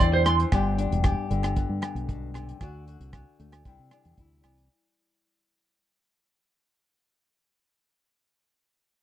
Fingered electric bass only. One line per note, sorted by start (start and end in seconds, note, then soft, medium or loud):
0.00 0.44 E2 medium
0.52 0.87 G1 medium
0.91 1.14 E1 medium
1.30 1.65 G1 medium
1.69 1.81 G2 medium
1.95 2.52 B1 medium
2.61 2.96 D2 medium
3.00 3.23 C2 medium
3.39 3.62 D2 medium
3.65 3.77 C2 medium
3.79 3.90 C3 medium
4.05 4.16 E2 medium
4.18 4.41 D2 medium
4.44 4.67 C2 medium